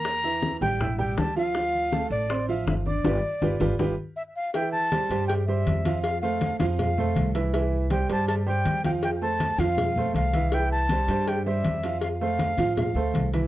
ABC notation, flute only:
X:1
M:4/4
L:1/8
Q:1/4=160
K:C
V:1 name="Flute"
_b3 g2 g a f- | f3 d2 e e d- | d6 e f | g a3 g e3 |
f f2 f f3 z | z2 g a a g2 g | g a2 f3 f2 | g a3 g e3 |
f f3 f3 z |]